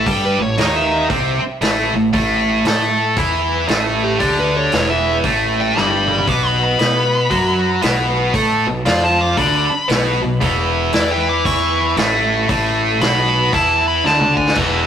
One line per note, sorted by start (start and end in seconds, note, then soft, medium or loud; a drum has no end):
0.00 0.23 A4 loud
0.06 0.37 G2 medium
0.06 0.38 G3 medium
0.06 0.38 G4 loud
0.06 kick medium
0.06 open hi-hat soft
0.25 0.42 B4 medium
0.38 0.57 A1 medium
0.38 0.54 A2 medium
0.38 0.75 C#5 medium
0.58 1.06 D#2 medium
0.58 1.09 D#3 medium
0.58 1.09 D#4 medium
0.58 snare loud
0.58 open hi-hat medium
0.76 1.03 E5 medium
1.10 1.40 C2 medium
1.10 1.41 C3 medium
1.10 1.41 C4 medium
1.10 kick loud
1.10 open hi-hat soft
1.41 muted distorted electric guitar stroke medium
1.41 muted picked electric bass stroke soft
1.61 1.91 A1 medium
1.61 1.93 A2 medium
1.61 1.93 A3 loud
1.61 snare medium
1.61 open hi-hat soft
1.94 2.12 A1 medium
1.94 2.10 A2 medium
2.13 2.62 A1 medium
2.13 2.65 A2 medium
2.13 2.65 A3 loud
2.13 kick loud
2.13 open hi-hat soft
2.65 3.13 A2 medium
2.65 3.17 A3 medium
2.65 3.17 A4 loud
2.65 snare loud
2.65 open hi-hat soft
3.17 3.65 E2 medium
3.17 3.68 E3 medium
3.17 3.68 E4 loud
3.17 kick loud
3.17 open hi-hat soft
3.68 4.17 A1 medium
3.68 4.19 A2 medium
3.68 4.20 A3 loud
3.68 snare loud
3.68 open hi-hat soft
4.04 4.37 G4 medium
4.20 4.68 D2 medium
4.20 4.71 D3 medium
4.20 4.71 D4 loud
4.20 kick medium
4.20 open hi-hat soft
4.39 4.55 B4 medium
4.57 4.89 C#5 medium
4.72 5.20 E1 medium
4.72 5.23 E2 medium
4.72 5.23 E3 medium
4.72 snare loud
4.72 open hi-hat soft
4.90 5.16 E5 medium
5.24 5.72 A1 medium
5.24 5.75 A2 medium
5.24 5.75 A3 medium
5.24 kick loud
5.24 open hi-hat soft
5.61 5.79 G5 medium
5.75 6.24 G1 medium
5.75 6.26 G2 medium
5.75 6.26 G3 medium
5.75 6.27 B5 medium
5.75 snare medium
6.07 mid tom medium
6.18 floor tom medium
6.28 6.75 B1 medium
6.28 6.78 B2 medium
6.28 6.77 B3 medium
6.28 6.47 D6 medium
6.28 kick medium
6.28 open hi-hat soft
6.47 6.62 B5 medium
6.64 8.13 B5 medium
6.79 7.27 B2 medium
6.79 7.30 B3 medium
6.79 7.30 B4 medium
6.79 snare loud
6.79 open hi-hat soft
7.30 7.78 F#2 medium
7.30 7.81 F#3 medium
7.30 7.81 F#4 medium
7.30 kick medium
7.30 open hi-hat soft
7.82 8.31 B1 medium
7.82 8.33 B2 medium
7.82 8.33 B3 loud
7.82 snare loud
7.82 open hi-hat soft
8.34 8.64 A2 medium
8.34 8.65 A3 medium
8.34 8.65 A4 loud
8.34 kick medium
8.34 open hi-hat soft
8.66 8.84 B1 medium
8.66 8.82 B2 medium
8.85 9.34 F2 medium
8.85 9.36 F3 medium
8.85 9.37 F4 loud
8.85 9.03 D5 loud
8.85 snare loud
8.85 open hi-hat medium
9.04 9.20 A5 medium
9.21 9.37 D6 loud
9.37 9.67 D2 medium
9.37 9.68 D3 medium
9.37 9.69 D4 loud
9.37 9.88 B5 loud
9.37 kick loud
9.37 open hi-hat medium
9.70 muted distorted electric guitar stroke medium
9.70 muted picked electric bass stroke soft
9.89 10.19 B1 medium
9.89 10.20 B2 medium
9.89 10.20 B3 medium
9.89 snare loud
9.89 open hi-hat soft
10.22 10.40 B1 medium
10.22 10.37 B2 medium
10.41 10.89 E1 medium
10.41 10.92 E2 medium
10.41 10.92 E3 loud
10.41 kick medium
10.41 open hi-hat soft
10.93 11.41 E2 medium
10.93 11.44 E3 medium
10.93 11.44 E4 loud
10.93 11.10 D5 loud
10.93 snare loud
10.93 open hi-hat soft
11.11 11.27 G5 medium
11.29 11.45 D6 loud
11.45 11.93 E2 medium
11.45 11.96 E3 medium
11.45 11.97 E4 loud
11.45 11.95 C#6 loud
11.45 kick medium
11.45 open hi-hat soft
11.96 12.45 A1 medium
11.96 12.47 A2 medium
11.96 12.48 A3 medium
11.96 snare loud
11.96 open hi-hat soft
12.48 12.97 A1 medium
12.48 13.00 A2 medium
12.48 13.00 A3 loud
12.48 kick loud
12.48 open hi-hat soft
13.01 13.49 B1 medium
13.01 13.52 B2 medium
13.01 13.52 B3 medium
13.01 13.51 B5 loud
13.01 snare loud
13.01 open hi-hat soft
13.53 14.01 E2 medium
13.53 14.04 E3 medium
13.53 14.04 E4 loud
13.53 13.85 A5 medium
13.53 kick loud
13.53 open hi-hat soft
13.88 14.05 B5 medium
14.05 14.53 D2 medium
14.05 14.56 D3 medium
14.05 14.56 D4 medium
14.05 14.37 A5 medium
14.05 snare medium
14.21 mid tom medium
14.37 14.56 G#5 medium
14.37 kick medium
14.48 snare medium
14.55 14.87 E1 medium
14.55 14.87 E2 medium
14.55 14.87 E3 medium
14.55 kick medium
14.55 crash loud